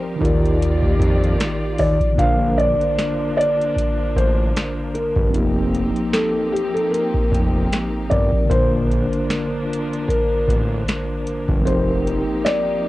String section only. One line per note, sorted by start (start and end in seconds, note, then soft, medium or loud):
0.00 0.19 F3 medium
0.00 0.19 C4 medium
0.00 0.19 D#4 medium
0.00 0.19 G4 medium
0.00 0.19 A#4 medium
0.20 2.16 D#3 medium
0.20 2.16 A#3 medium
0.20 2.16 F4 medium
0.20 2.16 G4 medium
0.20 2.16 D5 medium
2.17 5.31 F3 medium
2.17 5.30 A#3 medium
2.17 5.30 D4 medium
5.33 8.47 F3 medium
5.33 8.47 A#3 medium
5.33 8.47 C4 medium
5.33 8.46 D#4 medium
5.33 8.47 G4 medium
8.50 11.62 F3 medium
8.50 11.62 A#3 medium
8.50 11.63 D4 medium
11.65 12.89 F3 medium
11.65 12.89 A#3 medium
11.65 12.89 C4 medium
11.65 12.89 D#4 medium
11.65 12.89 G4 medium